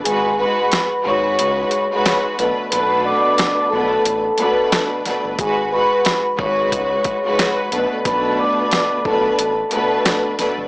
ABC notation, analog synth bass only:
X:1
M:4/4
L:1/16
Q:"Swing 16ths" 1/4=90
K:B
V:1 name="Analog synth bass" clef=bass
G,,,3 z3 G,,,2 C,,2 z4 B,,, z | B,,,3 z3 B,,,2 =A,,,2 z4 z =G,,, | G,,,3 z3 G,,,2 C,,2 z4 B,,, z | B,,,3 z3 B,,,2 =A,,,2 z4 z =G,,, |]